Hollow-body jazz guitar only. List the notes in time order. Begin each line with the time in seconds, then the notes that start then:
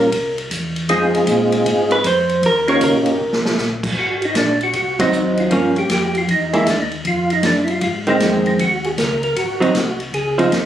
Already playing: A#4
1.92 B4
2.07 C5
2.46 A#4
2.69 C#5
2.84 A#4
5.00 F#3 C4 D#4
5.51 F3 A#3 C#4
6.53 G#3 A#3 E4
8.07 D#3 G#3 C4
9.60 F#3 C4 D#4
10.38 F3 C4 D#4